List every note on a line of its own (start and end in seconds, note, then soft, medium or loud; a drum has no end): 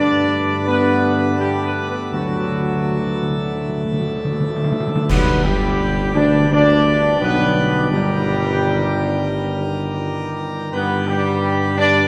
0.00 0.28 G2 loud
0.00 1.94 G2 loud
0.00 5.05 D3 medium
0.00 5.05 A3 medium
0.00 0.63 D4 loud
0.00 2.07 D4 medium
0.00 2.11 B4 medium
0.00 0.64 D5 loud
0.67 1.38 B3 loud
0.67 1.35 B3 loud
0.67 1.34 B4 loud
1.37 1.60 G3 medium
1.37 1.61 G3 medium
1.37 1.61 G4 loud
1.62 1.73 B3 medium
1.62 1.85 B3 medium
1.62 1.87 B4 medium
1.87 1.98 B3 medium
1.87 2.11 B3 medium
1.87 2.00 B4 medium
2.11 4.71 D2 medium
2.11 2.19 D3 soft
2.11 4.30 F#3 medium
2.11 4.31 F#3 medium
2.11 5.09 E4 medium
2.11 4.31 F#4 medium
2.11 5.09 A4 medium
2.20 2.27 D3 soft
2.28 2.35 D3 soft
2.36 2.42 D3 soft
2.44 2.50 D3 soft
2.52 2.59 D3 soft
2.60 2.66 D3 soft
2.76 2.83 D3 medium
2.84 2.91 D3 medium
2.92 2.98 D3 soft
2.99 3.06 D3 medium
3.07 3.13 D3 medium
3.15 3.21 D3 medium
3.23 3.29 D3 medium
3.30 3.37 D3 medium
3.38 3.44 D3 medium
3.45 3.52 D3 medium
3.53 3.60 D3 medium
3.61 3.68 D3 medium
3.69 3.76 D3 medium
3.77 3.84 D3 medium
3.85 3.91 D3 medium
3.93 3.99 D3 medium
4.01 4.07 D3 medium
4.08 4.15 D3 medium
4.16 4.24 D3 medium
4.25 4.32 D3 medium
4.33 4.39 D3 medium
4.40 4.47 D3 medium
4.48 4.55 D3 medium
4.56 4.63 D3 loud
4.64 4.71 D3 loud
4.72 4.79 D3 loud
4.80 4.87 D3 loud
4.88 4.94 D3 loud
4.96 5.03 D3 loud
5.08 5.42 B1 loud
5.08 7.88 D3 medium
5.08 10.69 G3 medium
5.08 5.42 B3 loud
5.08 10.69 G4 medium
5.08 7.87 B4 medium
5.08 5.43 B4 loud
5.08 concert bass drum medium
5.08 crash medium
5.44 6.12 G1 medium
5.44 6.12 G3 medium
5.44 6.16 G4 loud
6.15 6.48 D2 loud
6.15 6.48 D4 loud
6.15 6.51 D5 loud
6.51 7.17 D2 loud
6.51 7.17 D4 loud
6.51 7.18 D4 loud
6.51 7.18 D5 loud
7.20 7.87 B1 loud
7.20 7.87 B3 loud
7.20 7.88 B3 loud
7.20 7.88 B4 loud
7.91 10.34 G1 loud
7.91 10.74 D#3 medium
7.91 10.34 G3 loud
7.91 10.39 G4 loud
7.91 10.74 A#4 medium
10.73 12.08 G2 loud
10.73 12.08 D3 medium
10.73 12.08 G3 medium
10.73 11.06 B3 loud
10.73 12.08 G4 medium
10.73 12.08 B4 medium
10.73 11.06 B4 loud
11.07 11.74 G3 loud
11.07 11.75 G3 loud
11.07 11.79 G4 loud
11.78 12.08 D4 loud
11.78 12.08 D5 loud